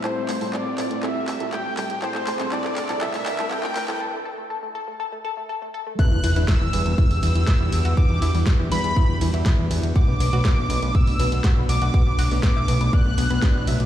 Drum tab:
RD |----------------|----------------|----------------|--x---x---x---x-|
HH |x-oox-oxx-oxx-ox|x-oxx-oxxooxx-ox|----------------|x-oxx-oxxooxx-ox|
CP |x-x-x-x-x-x-x-x-|xxxxxxxxxxxxxxxx|----------------|----------------|
SD |----------------|----------------|----------------|----o-------o---|
BD |----------------|----------------|----------------|o---o---o---o---|

RD |--x---x---x---x-|--x---x---x---x-|--x---x---x---x-|
HH |x-oox-oxx-oxx-ox|x-oxx-oxxooxx-ox|x-oox-oxx-oxx-ox|
CP |----------------|----------------|----------------|
SD |----o-------o---|----o-------o---|----o-------o---|
BD |o---o---o---o---|o---o---o---o---|o---o---o---o---|